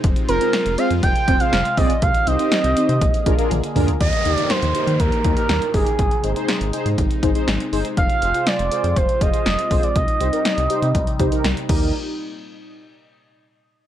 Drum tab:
CC |----------------|----------------|----------------|----------------|
HH |xxxxxxxxxxxxxxox|xxxxxxxxxxxxxxox|xxxxxxxxxxxxxxox|xxxxxxxxxxxxxxox|
SD |----o-------o---|----o-----------|----o-------o---|----o-------o---|
T1 |----------------|------------o---|----------------|----------------|
T2 |----------------|--------------o-|----------------|----------------|
FT |----------------|---------------o|----------------|----------------|
BD |o-------o-o---o-|o-------o-o-----|o-------o-o---o-|o-------o-o-----|

CC |----------------|--------------x-|----------------|
HH |xxxxxxxxxxxxxxox|xxxxxxxxxxxxxx--|----------------|
SD |----o-------o---|----o-------o---|----------------|
T1 |----------------|----------------|----------------|
T2 |----------------|----------------|----------------|
FT |----------------|----------------|----------------|
BD |o-------o-o---o-|o-------o-o---o-|----------------|